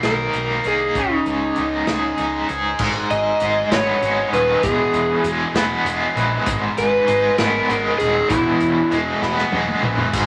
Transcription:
Already playing: G#2 D#3 A#3
0.03 B1 D#4 A#4, snare, closed hi-hat
0.33 B1 A#3, closed hi-hat
0.64 C2 D#4 G#4, closed hi-hat
0.95 C#2 C#3 D#4, kick, closed hi-hat
1.26 C#2 G#3, closed hi-hat
1.56 C#2 D#4, closed hi-hat
1.87 C#2 G#4, snare, closed hi-hat
2.18 C#2 D#4, closed hi-hat
2.49 C#2 G#4, closed hi-hat
2.79 G#1 G#2, kick, crash
3.10 G#1 D#5, closed hi-hat
3.40 G#1 G#3, closed hi-hat
3.71 G#1 B3 C#5, snare, closed hi-hat
4.01 G#1 G#3, closed hi-hat
4.32 D#1 D#3 B4, closed hi-hat
4.63 E1 E2 G#4, kick, closed hi-hat
4.93 E1, closed hi-hat
5.24 E1 G#3, closed hi-hat
5.54 E1 B3, snare, closed hi-hat
5.85 E1 G#3, closed hi-hat
6.16 A#1 E3, closed hi-hat
6.46 G#1 G#2, kick, closed hi-hat
6.77 G#1 B4, closed hi-hat
7.07 G#1 G#3, closed hi-hat
7.38 G#1 B3 A#4, snare, closed hi-hat
7.70 G#1 G#3, closed hi-hat
7.98 D#1 D#3 G#4, closed hi-hat
8.29 E1 E2 E4, kick, closed hi-hat
8.60 E1, closed hi-hat
8.91 E1 G#3, closed hi-hat
9.22 E1 B3, snare
9.38 snare
9.52 E1 G#3, high tom
9.68 mid tom
9.82 A#1 E3, mid tom
9.98 floor tom
10.13 G#1 G#2, kick, closed hi-hat, crash

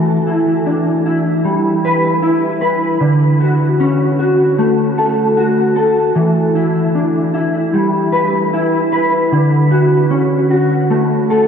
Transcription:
Already playing: E3
0.27 E4
0.66 D4
1.06 E4
1.44 G3
1.85 B4
2.22 E4
2.61 B4
3.00 D3
3.40 F#4
3.80 C#4
4.19 F#4
4.58 A3
4.98 A4
5.37 F#4
5.76 A4
6.16 E3
6.55 E4
6.95 D4
7.34 E4
7.73 G3
8.12 B4
8.54 E4
8.92 B4
9.32 D3
9.71 F#4
10.10 C#4
10.50 F#4
10.90 A3
11.30 A4

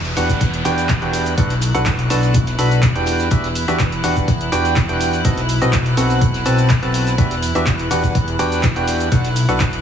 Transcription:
Already playing: E2 E4 F#6, downlifter
0.05 closed hi-hat
0.17 E2 D4 F#4 G4 B4 F#5, closed hi-hat, open hi-hat, cabasa
0.29 kick, closed hi-hat, cabasa
0.41 kick, closed hi-hat, cabasa
0.54 closed hi-hat
0.65 E2 D4 F#4 G4 B4 G5, closed hi-hat, open hi-hat, cabasa
0.78 snare, closed hi-hat, cabasa
0.89 kick, snare, clap, closed hi-hat, cabasa
1.02 E2 D4 F#4 G4 B4 G5, closed hi-hat
1.13 closed hi-hat, open hi-hat, cabasa
1.26 closed hi-hat, cabasa
1.38 B1 D4 F#4 A4 B4 F#5, kick, closed hi-hat, cabasa
1.50 snare, closed hi-hat
1.61 closed hi-hat, open hi-hat, cabasa
1.75 B1 D4 F#4 A4 B4 F#5, closed hi-hat, cabasa
1.86 kick, snare, clap, closed hi-hat, cabasa
1.99 closed hi-hat
2.10 B1 D4 F#4 A4 B4 A5, closed hi-hat, open hi-hat, cabasa
2.23 closed hi-hat, cabasa
2.34 kick, closed hi-hat, cabasa
2.46 snare, closed hi-hat
2.59 B1 D4 F#4 A4 B4 B5, closed hi-hat, open hi-hat, cabasa
2.71 closed hi-hat, cabasa
2.82 kick, snare, clap, closed hi-hat, cabasa
2.96 E2 D4 F#4 G4 B4 G5, closed hi-hat
3.06 closed hi-hat, open hi-hat, cabasa
3.20 snare, closed hi-hat, cabasa
3.31 E2 D4 F#4 G4 B4 E5, kick, closed hi-hat, cabasa
3.44 snare, closed hi-hat
3.55 closed hi-hat, open hi-hat, cabasa
3.68 E2 D4 F#4 G4 B4 E5, closed hi-hat, cabasa
3.79 kick, snare, clap, closed hi-hat, cabasa
3.92 closed hi-hat
4.03 E2 D4 F#4 G4 B4 F#5, closed hi-hat, open hi-hat, cabasa
4.16 kick, closed hi-hat, cabasa
4.28 kick, closed hi-hat, cabasa
4.41 closed hi-hat
4.52 E2 D4 F#4 G4 B4 G5, closed hi-hat, open hi-hat, cabasa
4.65 snare, closed hi-hat, cabasa
4.76 kick, snare, clap, closed hi-hat, cabasa
4.89 E2 D4 F#4 G4 B4 G5, closed hi-hat
5.01 closed hi-hat, open hi-hat, cabasa
5.13 closed hi-hat, cabasa
5.25 B1 C4 F#4 A4 B4 D#5, kick, closed hi-hat, cabasa
5.37 snare, closed hi-hat
5.49 closed hi-hat, open hi-hat, cabasa
5.62 B1 C4 F#4 A4 B4 D#5, closed hi-hat, cabasa
5.73 kick, snare, clap, closed hi-hat, cabasa
5.86 closed hi-hat
5.97 B1 C4 F#4 A4 B4 F#5, closed hi-hat, open hi-hat, cabasa
6.10 closed hi-hat, cabasa
6.21 kick, closed hi-hat, cabasa
6.34 snare, closed hi-hat
6.46 B1 C4 F#4 A4 B4 A5, closed hi-hat, open hi-hat, cabasa
6.58 closed hi-hat, cabasa
6.69 kick, snare, clap, closed hi-hat, cabasa
6.83 B1 C4 F#4 A4 B4 A5, closed hi-hat
6.94 closed hi-hat, open hi-hat, cabasa
7.07 snare, closed hi-hat, cabasa
7.18 E2 D4 F#4 G4 B4 E5, kick, closed hi-hat, cabasa
7.31 snare, closed hi-hat
7.42 closed hi-hat, open hi-hat, cabasa
7.55 E2 D4 F#4 G4 B4 E5, closed hi-hat, cabasa
7.66 kick, snare, clap, closed hi-hat, cabasa
7.79 closed hi-hat
7.91 E2 D4 F#4 G4 B4 F#5, closed hi-hat, open hi-hat, cabasa
8.04 kick, closed hi-hat, cabasa
8.15 kick, closed hi-hat, cabasa
8.28 closed hi-hat
8.39 E2 D4 F#4 G4 B4 G5, closed hi-hat, open hi-hat, cabasa
8.52 snare, closed hi-hat, cabasa
8.63 kick, snare, clap, closed hi-hat, cabasa
8.76 E2 D4 F#4 G4 B4 G5, closed hi-hat
8.88 closed hi-hat, open hi-hat, cabasa
9.00 closed hi-hat, cabasa
9.12 B1 D4 F#4 A4 B4 F#5, kick, closed hi-hat, cabasa
9.25 snare, closed hi-hat
9.36 closed hi-hat, open hi-hat, cabasa
9.49 B1 D4 F#4 A4 B4 F#5, closed hi-hat, cabasa
9.60 kick, snare, clap, closed hi-hat, cabasa
9.73 closed hi-hat

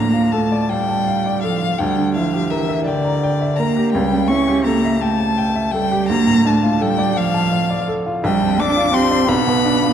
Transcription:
Already playing: D2 A2 A#3 D4 A#5
0.13 F4
0.31 A3 A4 A5
0.52 D5
0.69 G3 F5 G5
0.89 A5
1.08 F5
1.26 D5
1.42 F3 A4 F5
1.62 F4
1.78 D2 G3 G5
1.98 D3
2.14 F3 E4 F5
2.33 G4
2.50 E3 A#4 E5
2.69 E5
2.84 D3 D5 G5
3.05 A#5
3.23 G5
3.41 E5
3.56 A#3 A#4 A#5
3.76 G4
3.92 C#2 G3 G5
4.13 C#3
4.27 C#4 E4 C#6
4.48 G4
4.64 A#3 A4 A#5
4.85 E5
5.00 A3 G5 A5
5.20 A5
5.38 G5
5.55 E5
5.71 G3 A4 G5
5.91 G4
6.08 D2 A#3 A#5
6.27 A2
6.45 A3 D4 A5
6.63 F4
6.81 G3 A4 G5
6.98 D5
7.16 F3 F5
7.34 A5
7.53 F5
7.70 D5
7.88 A4
8.06 F4
8.23 A#1 G3 G5
8.41 F2
8.59 D4 D6
8.77 F4
8.93 C4 G4 C6
9.11 D5
9.28 B1 B3 B5
9.47 B2
9.65 D4
9.83 F4

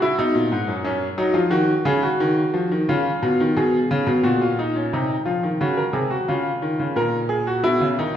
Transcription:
Already playing: C#3
0.02 E4
0.18 B2 D#4
0.35 A#2
0.52 G#2
0.68 F#2
0.84 F#2 C#4
1.18 F#3 D#4
1.34 F3 F4
1.50 D#3 F#4
1.85 C#3 G#4
2.03 F#4
2.20 D#3
2.54 F3
2.71 D#3
2.89 C#3 F4
3.23 B2
3.40 D#3
3.56 B2 G#4
3.91 C#3
4.07 B2
4.23 A#2 F#4
4.42 F4
4.59 D#4
4.76 C#4
4.93 C3 D#4
5.26 F3 F4
5.43 D#3
5.61 C#3 F#4
5.77 A#4
5.93 C3 G#4
6.10 F#4
6.28 C#3 F4
6.62 D#3
6.79 C#3
6.96 A#2 A#4
7.29 G#4
7.47 F#4
7.64 B2 E4
7.81 C#3
7.99 D#3 D#4

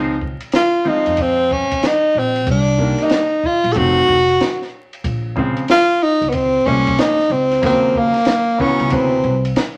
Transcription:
Already playing: C#2 F3 G#3 C4 D#4
0.21 kick
0.40 ride
0.52 F4, snare, hi-hat pedal, ride
0.85 F3 G#3 C4 D#4 F4
1.06 F2, ride
1.17 kick, ride
1.22 C4
1.51 C#4, kick
1.71 kick, ride
1.83 snare, hi-hat pedal, ride
1.87 D#4
2.15 A#1
2.19 C4
2.36 ride
2.47 C2, kick, ride
2.51 D4
2.78 D#3 G3 A#3 D4, kick
2.98 snare, ride
3.04 D#4
3.10 snare, hi-hat pedal, ride
3.43 F4, kick
3.64 A#1, ride
3.72 F1 D#3 F#3 A3 A4, kick, ride
3.77 C4 F#4
4.08 F1, kick
4.29 ride
4.40 snare, hi-hat pedal, ride
4.62 snare
4.93 ride
5.04 A#1, kick, ride
5.36 C#3 F3 G#3 C4, kick
5.57 ride
5.68 F4, snare, hi-hat pedal, ride
6.03 D#4
6.21 C#2, ride
6.29 B3, ride
6.34 C4, kick
6.66 C2 A#2 F3 G#3 C#4, kick
6.87 kick, ride
6.98 D#4, snare, hi-hat pedal, ride
7.19 snare
7.30 C#2 C4
7.51 snare, ride
7.62 D#2 C#3 F3 F#3 A#3 C4, kick, ride
7.95 A#3, kick
8.14 snare, ride
8.25 snare, hi-hat pedal, ride
8.58 C#3 E3 F3 B3 C#4, kick
8.66 F#3
8.80 C#2, ride
8.90 D2 C3 E3 F#3 C4 B4, kick, ride
9.24 C2
9.45 ride
9.56 snare, hi-hat pedal, ride

